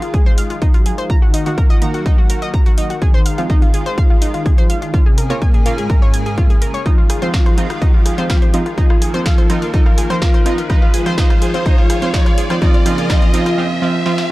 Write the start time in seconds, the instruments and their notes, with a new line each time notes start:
Already playing: analog synth pad D#3 G#3 F4, riser
0.02 synth pluck F4, closed hi-hat
0.14 analog polysynth G#3 G#4, synth pluck G#4, kick, closed hi-hat
0.26 synth pluck C5
0.38 synth pluck F5, open hi-hat
0.50 analog polysynth F3 F4, synth pluck F4, closed hi-hat
0.62 synth pluck D#4, kick, closed hi-hat
0.74 analog polysynth F#3 F#4, synth pluck F4, closed hi-hat
0.86 synth pluck G#4, open hi-hat
0.98 analog polysynth F3 F4, synth pluck C5, closed hi-hat
1.10 analog synth pad A#3 F#4, synth pluck A#5, kick, closed hi-hat
1.22 analog polysynth D#3 D#4, synth pluck F#4
1.34 synth pluck D#4, open hi-hat
1.46 synth stab D#3 A#3 D#4, synth pluck F#4, closed hi-hat
1.58 analog polysynth F3 F4, synth pluck A#4, kick, closed hi-hat
1.70 synth pluck D#5, closed hi-hat
1.82 synth stab D#3 A#3 D#4, synth pluck A#5, open hi-hat
1.94 analog polysynth F#3 F#4, synth pluck F#4, closed hi-hat
2.06 synth pluck D#4, kick, closed hi-hat
2.18 synth pluck F#4
2.30 synth pluck A#4, open hi-hat
2.42 synth pluck D#5, closed hi-hat
2.54 synth pluck A#5, kick, closed hi-hat
2.66 synth pluck F#4, closed hi-hat
2.78 synth pluck D#4, open hi-hat
2.90 synth pluck F#4, closed hi-hat
3.02 analog polysynth D#3 D#4, analog synth pad G#3 F4, synth pluck G#4, kick, closed hi-hat
3.14 synth pluck C5
3.26 synth pluck F5, open hi-hat
3.38 synth stab F3 C4 F4, synth pluck F4, closed hi-hat
3.50 analog polysynth D#3 D#4, synth pluck D#4, kick, closed hi-hat
3.62 synth pluck F4, closed hi-hat
3.74 synth pluck G#4, open hi-hat
3.86 synth pluck C5, closed hi-hat
3.98 analog polysynth F3 F4, synth pluck F5, kick, closed hi-hat
4.10 synth pluck F4
4.22 synth pluck D#4, open hi-hat
4.34 analog polysynth D#3 D#4, synth pluck F4, closed hi-hat
4.46 synth pluck G#4, kick, closed hi-hat
4.58 analog polysynth F3 F4, synth pluck C5, closed hi-hat
4.70 synth pluck F5, open hi-hat
4.82 analog polysynth D#3 D#4, synth pluck F4, closed hi-hat
4.94 analog synth pad C#3 A#3 G#4, synth pluck F4, kick, closed hi-hat
5.06 analog polysynth C3 C4, synth pluck G#4
5.18 synth pluck A#4, open hi-hat
5.30 synth stab A#3 F4 A#4, synth pluck C#5, closed hi-hat
5.42 analog polysynth A#2 A#3, synth pluck G#5, kick, closed hi-hat
5.54 synth pluck G#4, closed hi-hat
5.66 synth stab A#3 F4 A#4, synth pluck F4, open hi-hat
5.78 analog polysynth G#2 G#3, synth pluck G#4, closed hi-hat
5.90 synth pluck A#4, kick, closed hi-hat
6.02 synth pluck C#5
6.14 synth pluck G#5, open hi-hat
6.26 synth pluck G#4, closed hi-hat
6.38 synth pluck F4, kick, closed hi-hat
6.50 synth pluck G#4, closed hi-hat
6.62 synth pluck A#4, open hi-hat
6.74 synth pluck C#5, closed hi-hat
6.86 analog synth pad D#3 G#3 F4, analog polysynth F3 F4, synth pluck D#4, kick, cross-stick, closed hi-hat
6.98 synth pluck F4
7.10 synth pluck G#4, cross-stick, open hi-hat
7.22 synth stab F3 C4 F4, synth pluck C5, closed hi-hat
7.34 analog polysynth F3 F4, synth pluck F5, kick, snare, closed hi-hat
7.46 synth pluck C5, cross-stick, closed hi-hat
7.58 synth stab F3 C4 F4, synth pluck D#4, open hi-hat
7.70 synth pluck F4, cross-stick, closed hi-hat
7.82 analog polysynth F3 F4, synth pluck D#4, kick, closed hi-hat
7.94 synth pluck F4
8.06 synth pluck G#4, cross-stick, open hi-hat
8.18 synth stab F3 C4 F4, synth pluck C5, closed hi-hat
8.30 analog polysynth F3 F4, synth pluck F5, kick, cross-stick, snare, closed hi-hat
8.42 synth pluck C5, closed hi-hat
8.54 synth stab F3 C4 F4, synth pluck D#4, open hi-hat
8.66 synth pluck F4, cross-stick, closed hi-hat
8.78 analog polysynth F3 F4, analog synth pad A#3, synth pluck D#4, kick, closed hi-hat
8.90 synth pluck F4, cross-stick
9.02 synth pluck G#4, open hi-hat
9.14 synth stab F3 C4 F4, synth pluck C5, closed hi-hat
9.26 analog polysynth F3 F4, synth pluck F5, kick, cross-stick, snare, closed hi-hat
9.38 synth pluck C5, closed hi-hat
9.50 synth stab F3 C4 F4, synth pluck D#4, cross-stick, open hi-hat
9.62 synth pluck F4, closed hi-hat
9.74 analog polysynth F3 F4, synth pluck D#4, kick, closed hi-hat
9.86 synth pluck F4, cross-stick
9.98 synth pluck G#4, open hi-hat
10.10 synth stab F3 C4 F4, synth pluck C5, cross-stick, closed hi-hat
10.22 analog polysynth F3 F4, synth pluck F5, kick, snare, closed hi-hat
10.34 synth pluck C5, closed hi-hat
10.46 synth stab F3 C4 F4, synth pluck D#4, cross-stick, open hi-hat
10.58 synth pluck F4, closed hi-hat
10.70 analog polysynth F3 F4, analog synth pad G#3 F4, synth pluck D#4, kick, cross-stick, closed hi-hat
10.82 synth pluck F4
10.94 synth pluck G#4, open hi-hat
11.06 synth stab F3 C4 F4, synth pluck C5, cross-stick, closed hi-hat
11.18 analog polysynth F3 F4, synth pluck D#4, kick, snare, closed hi-hat
11.30 synth pluck F4, cross-stick, closed hi-hat
11.42 synth pluck G#4, open hi-hat
11.54 synth stab F3 C4 F4, synth pluck C5, closed hi-hat
11.66 analog polysynth F3 F4, synth pluck D#4, kick, cross-stick, closed hi-hat
11.78 synth pluck F4
11.90 synth pluck G#4, cross-stick, open hi-hat
12.02 synth stab F3 C4 F4, synth pluck C5, closed hi-hat
12.14 analog polysynth F3 F4, synth pluck D#4, kick, snare, closed hi-hat
12.26 synth pluck F4, cross-stick, closed hi-hat
12.38 synth pluck G#4, open hi-hat
12.50 synth stab F3 C4 F4, synth pluck C5, cross-stick, closed hi-hat
12.62 analog synth pad C#3 A#3 G#4, analog polysynth F3 F4, synth stab F3 C4 F4, synth pluck D#4, kick, closed hi-hat
12.74 synth pluck F4, closed hi-hat
12.86 analog polysynth F3 F4, synth stab F3 C4 F4, synth pluck D#4, cross-stick, open hi-hat
12.98 synth pluck F4, closed hi-hat
13.10 analog polysynth F3 F4, synth stab F3 C4 F4, synth pluck D#4, kick, cross-stick, snare, closed hi-hat
13.22 synth pluck F4, closed hi-hat
13.34 analog polysynth F3 F4, synth stab F3 C4 F4, synth pluck D#4, open hi-hat
13.46 synth pluck F4, cross-stick, closed hi-hat
13.58 synth stab F3 C4 F4
13.82 synth stab F3 C4 F4
14.06 synth stab F3 C4 F4, snare
14.18 snare